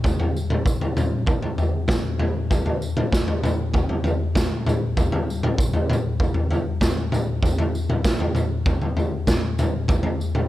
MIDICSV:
0, 0, Header, 1, 2, 480
1, 0, Start_track
1, 0, Tempo, 616016
1, 34, Time_signature, 4, 2, 24, 8
1, 8168, End_track
2, 0, Start_track
2, 0, Title_t, "Drums"
2, 31, Note_on_c, 9, 43, 72
2, 33, Note_on_c, 9, 36, 97
2, 46, Note_on_c, 9, 54, 68
2, 108, Note_off_c, 9, 43, 0
2, 111, Note_off_c, 9, 36, 0
2, 124, Note_off_c, 9, 54, 0
2, 153, Note_on_c, 9, 43, 75
2, 231, Note_off_c, 9, 43, 0
2, 284, Note_on_c, 9, 54, 65
2, 362, Note_off_c, 9, 54, 0
2, 392, Note_on_c, 9, 43, 72
2, 392, Note_on_c, 9, 47, 66
2, 469, Note_off_c, 9, 43, 0
2, 469, Note_off_c, 9, 47, 0
2, 512, Note_on_c, 9, 36, 101
2, 524, Note_on_c, 9, 54, 88
2, 590, Note_off_c, 9, 36, 0
2, 601, Note_off_c, 9, 54, 0
2, 634, Note_on_c, 9, 43, 73
2, 712, Note_off_c, 9, 43, 0
2, 754, Note_on_c, 9, 43, 78
2, 754, Note_on_c, 9, 47, 78
2, 761, Note_on_c, 9, 54, 63
2, 832, Note_off_c, 9, 43, 0
2, 832, Note_off_c, 9, 47, 0
2, 838, Note_off_c, 9, 54, 0
2, 985, Note_on_c, 9, 43, 72
2, 991, Note_on_c, 9, 36, 104
2, 1000, Note_on_c, 9, 54, 28
2, 1063, Note_off_c, 9, 43, 0
2, 1069, Note_off_c, 9, 36, 0
2, 1078, Note_off_c, 9, 54, 0
2, 1110, Note_on_c, 9, 43, 71
2, 1188, Note_off_c, 9, 43, 0
2, 1232, Note_on_c, 9, 43, 80
2, 1239, Note_on_c, 9, 54, 25
2, 1310, Note_off_c, 9, 43, 0
2, 1317, Note_off_c, 9, 54, 0
2, 1464, Note_on_c, 9, 43, 88
2, 1464, Note_on_c, 9, 47, 73
2, 1470, Note_on_c, 9, 38, 74
2, 1471, Note_on_c, 9, 36, 107
2, 1487, Note_on_c, 9, 54, 84
2, 1542, Note_off_c, 9, 43, 0
2, 1542, Note_off_c, 9, 47, 0
2, 1548, Note_off_c, 9, 38, 0
2, 1549, Note_off_c, 9, 36, 0
2, 1565, Note_off_c, 9, 54, 0
2, 1710, Note_on_c, 9, 43, 78
2, 1710, Note_on_c, 9, 47, 72
2, 1788, Note_off_c, 9, 43, 0
2, 1788, Note_off_c, 9, 47, 0
2, 1954, Note_on_c, 9, 36, 95
2, 1954, Note_on_c, 9, 43, 73
2, 1961, Note_on_c, 9, 54, 67
2, 2032, Note_off_c, 9, 36, 0
2, 2032, Note_off_c, 9, 43, 0
2, 2039, Note_off_c, 9, 54, 0
2, 2071, Note_on_c, 9, 43, 71
2, 2149, Note_off_c, 9, 43, 0
2, 2197, Note_on_c, 9, 54, 68
2, 2275, Note_off_c, 9, 54, 0
2, 2312, Note_on_c, 9, 43, 84
2, 2312, Note_on_c, 9, 47, 71
2, 2390, Note_off_c, 9, 43, 0
2, 2390, Note_off_c, 9, 47, 0
2, 2435, Note_on_c, 9, 36, 93
2, 2440, Note_on_c, 9, 38, 72
2, 2450, Note_on_c, 9, 54, 88
2, 2513, Note_off_c, 9, 36, 0
2, 2518, Note_off_c, 9, 38, 0
2, 2528, Note_off_c, 9, 54, 0
2, 2555, Note_on_c, 9, 43, 77
2, 2633, Note_off_c, 9, 43, 0
2, 2677, Note_on_c, 9, 43, 84
2, 2677, Note_on_c, 9, 47, 73
2, 2690, Note_on_c, 9, 54, 63
2, 2754, Note_off_c, 9, 43, 0
2, 2754, Note_off_c, 9, 47, 0
2, 2768, Note_off_c, 9, 54, 0
2, 2911, Note_on_c, 9, 43, 77
2, 2915, Note_on_c, 9, 36, 90
2, 2930, Note_on_c, 9, 54, 26
2, 2989, Note_off_c, 9, 43, 0
2, 2993, Note_off_c, 9, 36, 0
2, 3008, Note_off_c, 9, 54, 0
2, 3033, Note_on_c, 9, 43, 65
2, 3111, Note_off_c, 9, 43, 0
2, 3148, Note_on_c, 9, 43, 90
2, 3168, Note_on_c, 9, 54, 24
2, 3226, Note_off_c, 9, 43, 0
2, 3246, Note_off_c, 9, 54, 0
2, 3391, Note_on_c, 9, 43, 74
2, 3391, Note_on_c, 9, 47, 70
2, 3393, Note_on_c, 9, 36, 99
2, 3398, Note_on_c, 9, 38, 81
2, 3404, Note_on_c, 9, 54, 90
2, 3469, Note_off_c, 9, 43, 0
2, 3469, Note_off_c, 9, 47, 0
2, 3471, Note_off_c, 9, 36, 0
2, 3476, Note_off_c, 9, 38, 0
2, 3482, Note_off_c, 9, 54, 0
2, 3635, Note_on_c, 9, 43, 83
2, 3635, Note_on_c, 9, 47, 76
2, 3653, Note_on_c, 9, 54, 61
2, 3713, Note_off_c, 9, 43, 0
2, 3713, Note_off_c, 9, 47, 0
2, 3731, Note_off_c, 9, 54, 0
2, 3872, Note_on_c, 9, 43, 72
2, 3874, Note_on_c, 9, 36, 104
2, 3883, Note_on_c, 9, 54, 62
2, 3950, Note_off_c, 9, 43, 0
2, 3952, Note_off_c, 9, 36, 0
2, 3961, Note_off_c, 9, 54, 0
2, 3992, Note_on_c, 9, 43, 81
2, 4070, Note_off_c, 9, 43, 0
2, 4131, Note_on_c, 9, 54, 59
2, 4209, Note_off_c, 9, 54, 0
2, 4234, Note_on_c, 9, 43, 79
2, 4234, Note_on_c, 9, 47, 72
2, 4312, Note_off_c, 9, 43, 0
2, 4312, Note_off_c, 9, 47, 0
2, 4351, Note_on_c, 9, 36, 104
2, 4366, Note_on_c, 9, 54, 86
2, 4429, Note_off_c, 9, 36, 0
2, 4444, Note_off_c, 9, 54, 0
2, 4468, Note_on_c, 9, 43, 70
2, 4546, Note_off_c, 9, 43, 0
2, 4594, Note_on_c, 9, 43, 84
2, 4594, Note_on_c, 9, 47, 78
2, 4620, Note_on_c, 9, 54, 61
2, 4672, Note_off_c, 9, 43, 0
2, 4672, Note_off_c, 9, 47, 0
2, 4698, Note_off_c, 9, 54, 0
2, 4830, Note_on_c, 9, 36, 90
2, 4832, Note_on_c, 9, 43, 73
2, 4858, Note_on_c, 9, 54, 23
2, 4908, Note_off_c, 9, 36, 0
2, 4910, Note_off_c, 9, 43, 0
2, 4936, Note_off_c, 9, 54, 0
2, 4943, Note_on_c, 9, 43, 73
2, 5021, Note_off_c, 9, 43, 0
2, 5069, Note_on_c, 9, 43, 82
2, 5087, Note_on_c, 9, 54, 23
2, 5147, Note_off_c, 9, 43, 0
2, 5165, Note_off_c, 9, 54, 0
2, 5307, Note_on_c, 9, 43, 81
2, 5307, Note_on_c, 9, 47, 74
2, 5308, Note_on_c, 9, 36, 90
2, 5313, Note_on_c, 9, 38, 75
2, 5318, Note_on_c, 9, 54, 89
2, 5385, Note_off_c, 9, 43, 0
2, 5385, Note_off_c, 9, 47, 0
2, 5386, Note_off_c, 9, 36, 0
2, 5391, Note_off_c, 9, 38, 0
2, 5396, Note_off_c, 9, 54, 0
2, 5549, Note_on_c, 9, 43, 79
2, 5549, Note_on_c, 9, 47, 76
2, 5563, Note_on_c, 9, 54, 67
2, 5627, Note_off_c, 9, 43, 0
2, 5627, Note_off_c, 9, 47, 0
2, 5641, Note_off_c, 9, 54, 0
2, 5785, Note_on_c, 9, 43, 78
2, 5786, Note_on_c, 9, 36, 100
2, 5809, Note_on_c, 9, 54, 76
2, 5863, Note_off_c, 9, 43, 0
2, 5864, Note_off_c, 9, 36, 0
2, 5887, Note_off_c, 9, 54, 0
2, 5910, Note_on_c, 9, 43, 80
2, 5988, Note_off_c, 9, 43, 0
2, 6038, Note_on_c, 9, 54, 66
2, 6116, Note_off_c, 9, 54, 0
2, 6152, Note_on_c, 9, 43, 73
2, 6152, Note_on_c, 9, 47, 74
2, 6230, Note_off_c, 9, 43, 0
2, 6230, Note_off_c, 9, 47, 0
2, 6269, Note_on_c, 9, 36, 99
2, 6270, Note_on_c, 9, 54, 97
2, 6274, Note_on_c, 9, 38, 74
2, 6347, Note_off_c, 9, 36, 0
2, 6348, Note_off_c, 9, 54, 0
2, 6352, Note_off_c, 9, 38, 0
2, 6391, Note_on_c, 9, 43, 79
2, 6469, Note_off_c, 9, 43, 0
2, 6504, Note_on_c, 9, 43, 76
2, 6504, Note_on_c, 9, 47, 70
2, 6514, Note_on_c, 9, 54, 60
2, 6582, Note_off_c, 9, 43, 0
2, 6582, Note_off_c, 9, 47, 0
2, 6591, Note_off_c, 9, 54, 0
2, 6747, Note_on_c, 9, 36, 105
2, 6751, Note_on_c, 9, 43, 72
2, 6759, Note_on_c, 9, 54, 26
2, 6825, Note_off_c, 9, 36, 0
2, 6828, Note_off_c, 9, 43, 0
2, 6836, Note_off_c, 9, 54, 0
2, 6869, Note_on_c, 9, 43, 68
2, 6947, Note_off_c, 9, 43, 0
2, 6987, Note_on_c, 9, 43, 79
2, 7006, Note_on_c, 9, 54, 24
2, 7065, Note_off_c, 9, 43, 0
2, 7084, Note_off_c, 9, 54, 0
2, 7225, Note_on_c, 9, 43, 76
2, 7225, Note_on_c, 9, 47, 71
2, 7226, Note_on_c, 9, 36, 95
2, 7231, Note_on_c, 9, 38, 76
2, 7231, Note_on_c, 9, 54, 94
2, 7303, Note_off_c, 9, 43, 0
2, 7303, Note_off_c, 9, 47, 0
2, 7304, Note_off_c, 9, 36, 0
2, 7309, Note_off_c, 9, 38, 0
2, 7309, Note_off_c, 9, 54, 0
2, 7469, Note_on_c, 9, 54, 68
2, 7472, Note_on_c, 9, 43, 75
2, 7472, Note_on_c, 9, 47, 75
2, 7547, Note_off_c, 9, 54, 0
2, 7550, Note_off_c, 9, 43, 0
2, 7550, Note_off_c, 9, 47, 0
2, 7700, Note_on_c, 9, 43, 75
2, 7705, Note_on_c, 9, 36, 110
2, 7716, Note_on_c, 9, 54, 65
2, 7778, Note_off_c, 9, 43, 0
2, 7783, Note_off_c, 9, 36, 0
2, 7793, Note_off_c, 9, 54, 0
2, 7815, Note_on_c, 9, 43, 83
2, 7893, Note_off_c, 9, 43, 0
2, 7956, Note_on_c, 9, 54, 65
2, 8034, Note_off_c, 9, 54, 0
2, 8064, Note_on_c, 9, 43, 71
2, 8064, Note_on_c, 9, 47, 66
2, 8141, Note_off_c, 9, 43, 0
2, 8141, Note_off_c, 9, 47, 0
2, 8168, End_track
0, 0, End_of_file